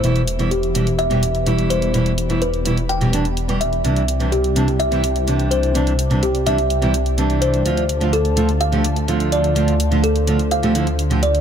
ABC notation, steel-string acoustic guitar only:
X:1
M:4/4
L:1/16
Q:1/4=126
K:C
V:1 name="Steel-string acoustic guitar" clef=bass
[B,,E,G,E] z2 [B,,E,G,E] z2 [B,,E,G,E] z2 [B,,E,G,G] z2 [B,,E,G,E]4 | [B,,E,G,E] z2 [B,,E,G,E] z2 [B,,E,G,E] z2 [B,,E,G,G] [B,,E,G,D] z2 [B,,E,G,G] z2 | [C,E,G,D] z2 [C,E,G,D] z2 [C,E,G,D] z2 [C,E,G,E] z2 [C,E,G,D]4 | [C,E,G,D] z2 [C,E,G,D] z2 [C,E,G,D] z2 [C,E,G,E] z2 [C,E,G,D]4 |
[D,F,A,F] z2 [D,F,A,F] z2 [D,F,A,F] z2 [D,F,A,G] z2 [D,F,A,F]4 | [D,F,A,F] z2 [D,F,A,F] z2 [D,F,A,F] z2 [D,F,A,G] [D,F,A,E] z2 [D,F,A,G] z2 |]